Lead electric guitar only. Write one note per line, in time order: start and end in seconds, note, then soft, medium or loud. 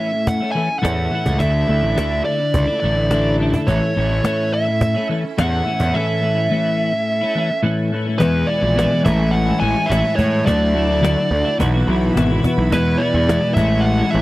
0.00 0.28 E5 medium
0.27 0.51 F#5 loud
0.52 0.79 G#5 loud
0.79 1.40 F#5 medium
1.39 2.21 E5 loud
2.25 2.79 D5 medium
2.80 3.34 D5 medium
3.67 4.24 C#5 medium
4.25 4.53 C#5 medium
4.54 5.06 E5 loud
5.39 5.97 F#5 medium
5.94 7.60 E5 loud
8.18 8.49 B4 medium
8.47 9.00 D5 loud
9.05 9.34 E5 medium
9.31 9.59 F#5 loud
9.60 9.90 G#5 loud
9.86 10.14 E5 loud
10.16 10.43 C#5 medium
10.46 11.55 D5 medium
12.73 13.02 B4 medium
12.97 13.54 D5 medium
13.54 13.85 E5 medium
13.80 14.09 F#5 loud
14.10 14.22 E5 loud